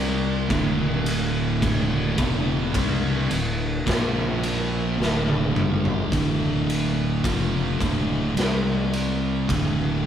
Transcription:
0.00 0.46 C2 medium
0.00 0.49 C3 medium
0.00 0.49 G3 loud
0.00 0.49 C4 medium
0.00 0.49 C4 loud
0.00 0.49 G4 medium
0.00 0.49 D5 medium
0.49 2.15 D1 loud
0.49 2.17 D2 medium
0.49 2.17 A2 loud
0.49 2.17 D3 loud
0.49 3.85 D4 medium
0.49 3.84 A4 medium
0.49 3.85 E5 medium
0.49 kick loud
0.49 ride loud
1.06 ride medium
1.62 kick loud
1.62 ride loud
2.17 2.71 E1 loud
2.17 2.73 E2 loud
2.17 2.73 B2 medium
2.17 2.73 E3 loud
2.17 kick loud
2.17 ride medium
2.74 3.26 C2 medium
2.74 3.29 C3 medium
2.74 3.29 G3 medium
2.74 3.30 C4 loud
2.74 kick loud
2.74 ride loud
3.29 3.82 D1 medium
3.29 3.76 D2 medium
3.29 3.76 A2 medium
3.29 ride medium
3.86 4.95 A#1 loud
3.86 4.97 A#2 loud
3.86 4.97 F3 loud
3.86 4.98 A#3 loud
3.86 4.99 A#3 medium
3.86 4.98 F4 medium
3.86 4.99 C5 medium
3.86 kick loud
3.86 snare loud
3.86 ride medium
4.43 ride medium
4.97 5.51 D1 loud
4.97 5.54 D2 loud
4.97 5.54 A2 loud
4.97 5.54 D3 loud
4.97 6.11 D4 medium
4.97 6.11 A4 medium
4.97 6.11 E5 medium
5.02 snare medium
5.28 high tom medium
5.54 6.07 G1 loud
5.54 6.10 G2 medium
5.54 6.10 D3 medium
5.54 6.10 G3 loud
5.54 mid tom medium
5.85 floor tom medium
6.11 7.20 D1 medium
6.11 7.22 D2 medium
6.11 7.23 A2 medium
6.11 7.23 D3 loud
6.11 8.35 D4 medium
6.11 8.35 A4 medium
6.11 8.35 E5 medium
6.11 kick loud
6.11 ride medium
6.70 ride medium
7.24 7.77 F1 medium
7.24 7.78 F2 medium
7.24 7.79 C3 medium
7.24 7.79 F3 loud
7.24 kick loud
7.24 ride loud
7.79 8.32 D1 medium
7.79 8.34 D2 medium
7.79 8.35 A2 loud
7.79 8.35 D3 loud
7.79 kick loud
7.79 ride medium
8.35 9.44 C2 loud
8.35 9.47 C3 loud
8.35 9.47 G3 loud
8.35 9.47 C4 medium
8.35 9.47 C4 loud
8.35 9.47 G4 medium
8.35 9.47 D5 medium
8.35 snare loud
8.35 ride medium
8.93 ride medium
9.49 10.06 D1 loud
9.49 10.06 D2 medium
9.49 10.06 A2 loud
9.49 10.06 D3 loud
9.49 10.06 D4 medium
9.49 10.06 A4 medium
9.49 10.06 E5 medium
9.49 kick medium
9.49 ride medium

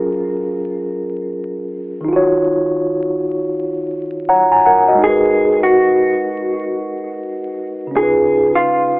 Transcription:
0.00 2.01 F#3 medium
0.00 2.03 C#4 medium
0.00 2.05 F4 medium
0.00 2.07 G#4 medium
0.00 2.09 A#4 loud
2.01 4.93 D#3 medium
2.01 4.95 D#4 medium
2.09 4.24 F4 medium
2.13 4.26 F#4 medium
2.13 4.28 C#5 medium
4.29 4.50 C#5 medium
4.29 4.49 F#5 medium
4.29 4.50 A#5 medium
4.52 4.65 G#5 medium
4.52 4.98 A#5 medium
4.66 4.87 A#4 medium
4.66 4.86 F#5 medium
4.88 5.01 F#4 medium
4.88 5.22 D#5 medium
4.95 7.87 G#3 medium
4.95 7.88 D#4 medium
5.02 7.90 F#4 medium
5.02 5.58 G#4 medium
5.02 7.92 A#4 medium
5.10 7.94 B4 medium
5.63 7.91 F#4 medium
7.87 9.00 C#3 medium
7.87 9.00 C#4 medium
7.95 9.00 D#4 medium
7.95 9.00 F4 medium
7.95 8.51 G#4 medium
8.03 9.00 B4 medium
8.55 9.00 F4 medium

